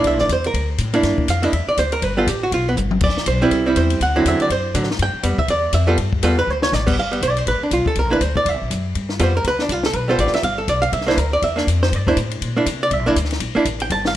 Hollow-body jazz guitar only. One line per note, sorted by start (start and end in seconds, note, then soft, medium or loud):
0.00 0.27 A#3 medium
0.00 0.27 D4 medium
0.00 0.28 E4 medium
0.07 0.20 E5 loud
0.21 0.30 D5 medium
0.33 0.45 C5 medium
0.47 0.69 A#4 loud
0.94 1.26 A#3 medium
0.94 1.27 D4 medium
0.94 1.27 E4 medium
1.30 1.43 F5 medium
1.42 1.52 A#3 medium
1.42 1.52 D4 medium
1.42 1.52 E4 medium
1.42 1.55 D#5 loud
1.55 1.68 E5 loud
1.69 1.78 D5 medium
1.79 1.93 C5 loud
1.93 2.03 A#4 medium
2.03 2.17 B4 medium
2.17 2.26 G3 medium
2.17 2.26 B3 medium
2.17 2.27 F4 medium
2.17 2.28 A4 medium
2.28 2.42 G4 medium
2.43 2.52 F#4 medium
2.54 2.67 F4 medium
2.69 2.74 B3 medium
3.04 3.26 D5 medium
3.28 3.42 C5 medium
3.42 3.65 G3 medium
3.42 3.65 C4 medium
3.42 3.65 E4 medium
3.42 3.52 B4 loud
3.52 3.76 A4 medium
3.66 3.99 G3 medium
3.66 3.99 C4 medium
3.66 3.99 E4 medium
3.77 3.99 C5 medium
4.03 4.25 F#5 loud
4.16 4.48 D3 medium
4.16 4.48 F#3 medium
4.16 4.48 C4 medium
4.16 4.49 E4 medium
4.28 4.41 E5 loud
4.42 4.51 D5 loud
4.52 4.74 C5 medium
4.75 4.88 D3 medium
4.75 4.88 F#3 medium
5.03 5.24 G5 loud
5.23 5.37 G3 medium
5.23 5.37 B3 medium
5.39 5.48 E5 loud
5.50 5.73 D5 loud
5.74 5.88 E5 medium
5.87 5.96 G3 medium
5.87 5.97 B3 medium
5.87 5.97 F4 medium
5.87 5.97 A4 medium
6.23 6.36 G3 medium
6.23 6.36 B3 medium
6.23 6.37 F4 medium
6.23 6.37 A4 medium
6.39 6.50 B4 loud
6.50 6.63 C5 loud
6.63 6.74 C#5 loud
6.74 6.87 D5 loud
6.87 6.96 G3 medium
6.87 6.96 B3 medium
6.99 7.13 F5 loud
7.11 7.21 G3 medium
7.11 7.21 B3 medium
7.23 7.38 D5 medium
7.38 7.47 C5 loud
7.48 7.62 B4 medium
7.63 7.72 D4 medium
7.73 7.87 F4 medium
7.87 7.96 A4 medium
7.99 8.12 A#4 medium
8.10 8.20 A#3 medium
8.10 8.20 D4 medium
8.10 8.20 E4 medium
8.10 8.22 B4 loud
8.22 8.36 C5 medium
8.37 8.48 D5 loud
8.48 8.87 E5 medium
9.20 9.33 G3 medium
9.20 9.33 B3 medium
9.20 9.33 F4 medium
9.20 9.23 A4 medium
9.20 9.36 C5 medium
9.37 9.45 A#4 loud
9.48 9.61 B4 loud
9.61 9.72 D4 medium
9.72 9.85 F4 medium
9.86 9.96 A4 loud
9.96 10.10 B4 medium
10.08 10.41 G3 medium
10.08 10.42 B3 medium
10.08 10.42 F4 medium
10.08 10.42 A4 medium
10.08 10.19 C5 loud
10.20 10.34 D5 medium
10.34 10.44 E5 loud
10.44 10.58 F5 loud
10.58 10.68 A4 medium
10.69 10.81 D5 medium
10.82 10.92 F5 loud
10.93 11.08 E5 medium
11.07 11.16 A#3 medium
11.07 11.17 D4 medium
11.07 11.17 E4 medium
11.07 11.18 C5 loud
11.18 11.32 A#4 medium
11.33 11.43 D5 loud
11.44 11.58 E5 medium
11.56 11.66 A#3 medium
11.56 11.66 D4 medium
11.83 11.92 C5 medium
11.96 12.08 D5 medium
12.07 12.16 A#3 medium
12.07 12.17 D4 medium
12.07 12.17 E4 medium
12.07 12.17 C5 loud
12.57 12.66 A#3 medium
12.57 12.66 D4 medium
12.57 12.66 E4 medium
12.83 12.93 D5 loud
12.93 13.07 E5 loud
13.06 13.15 A#3 medium
13.06 13.16 D4 medium
13.06 13.16 E4 medium
13.06 13.16 D5 loud
13.55 13.64 A#3 medium
13.55 13.65 D4 medium
13.55 13.65 E4 medium
13.82 13.91 G5 loud
13.92 14.05 A5 loud
14.07 14.13 F5 loud